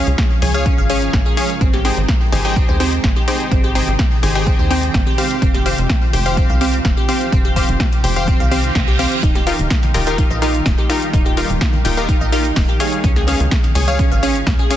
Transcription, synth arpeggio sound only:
0.54 C#5
0.66 C#4
0.78 F5
0.90 C#4
1.26 G#4
1.37 C#4
1.61 C4
1.74 G4
1.85 C4
2.45 G#4
2.56 C4
2.69 C5
2.80 C4
3.16 G4
3.28 C4
3.52 C4
3.64 G4
3.75 C4
4.35 G#4
4.47 C4
4.59 C5
4.71 C4
5.07 G4
5.18 C4
5.42 C4
5.54 G4
5.66 C4
6.26 C5
6.37 C4
6.50 F5
6.61 C4
6.97 G4
7.09 C4
7.32 C4
7.45 G4
7.56 C4
8.16 C5
8.28 C4
8.40 F5
8.51 C4
8.88 G4
8.99 C4
9.23 D#4
9.35 G4
9.47 D#4
10.07 A#4
10.18 D#4
10.31 D#5
10.42 D#4
10.78 G4
10.90 D#4
11.13 D#4
11.26 G4
11.37 D#4
11.97 A#4
12.09 D#4
12.21 D#5
12.32 D#4
12.69 G4
12.80 D#4
13.04 C#4
13.16 G#4
13.28 C#4
13.88 C#5
13.99 C#4
14.12 F5
14.23 C#4
14.59 G#4
14.71 C#4

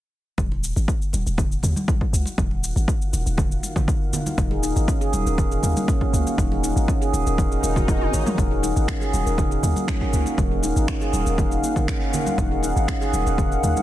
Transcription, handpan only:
4.38 D#4
4.51 G#4
4.63 D#4
4.88 C#4
5.01 G#4
5.27 A#4
5.52 G#4
5.64 A#3
5.89 C#4
6.14 A#3
6.39 D#4
6.52 G#4
6.64 D#4
6.89 C#4
7.02 G#4
7.27 A#4
7.52 G#4
7.63 A#4
7.76 F#4
7.88 G#4
8.01 F#4
8.13 C#5
8.26 A#4
8.38 D#4
8.51 G#4
8.63 D#4
9.01 G#4
9.26 A#4
9.51 G#4
9.63 A#3
9.88 C#4
10.13 A#3
10.38 D#4
10.51 G#4
10.63 D#4
11.01 G#4
11.26 A#4
11.38 D#4
11.51 G#4
11.63 A#3
12.13 A#3
12.51 G#4
12.63 D#4
12.88 C#4
13.01 G#4
13.27 A#4
13.52 G#4
13.64 A#3

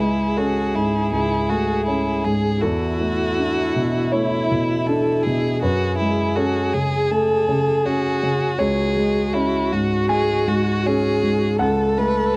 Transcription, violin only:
0.00 E4
0.38 F#4
0.75 E4
1.12 E4
1.49 F#4
1.86 E4
2.25 G#4
2.62 F#4
4.12 E4
4.86 A4
5.23 G#4
5.62 F#4
5.98 E4
6.36 F#4
6.74 G#4
7.11 A4
7.86 F#4
8.59 G#4
9.34 E4
9.73 F#4
10.10 G#4
10.48 F#4
10.86 G#4
11.61 A4
11.98 B4

